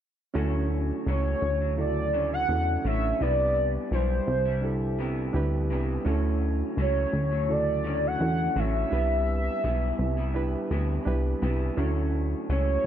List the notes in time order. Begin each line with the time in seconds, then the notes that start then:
0.33 D2 D3 F#3 A3 C#4 E4 F#4 A4
0.38 C#4
1.06 C#2 F#3 A3 C#4 C#5
1.42 D2
1.61 F#3 A3
1.77 C#3 E4 F#4 A4 D5
2.13 D3 F#3 A3 C#4
2.33 F#5
2.49 E2 C#4 E4 F#4 A4
2.85 A1 D3 F#3 A3 C#4 E5
3.20 C2 C3 G3 B3 D4 E4 G4 B4 D5
3.91 B1 G3 E4 C5
4.27 C2
4.45 G3 E4
4.62 D4 E4 G4 A4
4.99 C3 G3 B3 E4
5.33 D2 D4 E4 G4 B4
5.70 C2 C3 G3 B3 E4
6.04 D2 D3 F#3 A3 C#4 E4 F#4 A4
6.77 C#2 F#3 A3 C#4
6.81 C#5
7.13 D2
7.31 F#3 A3
7.48 C#3 E4 F#4 A4 D5
7.84 D3 F#3 A3 C#4
8.07 F#5
8.19 E2 C#4 E4 F#4 A4
8.24 F#5
8.56 A1 D3 F#3 A3 C#4 E5
8.90 C2 C3 G3 B3 D4 E4 G4 B4
9.64 B1 G3 B3 E4
9.99 C2
10.17 G3 B3 E4
10.34 D4 E4 G4 B4
10.71 D2 C3 G3 B3 E4
11.05 C2 D4 E4 G4 B4
11.42 C2 C3 G3 B3 E4
11.77 D2 D3 F#3 A3 C#4 E4 F#4 A4
12.49 C#2 F#3 A3 C#4 C#5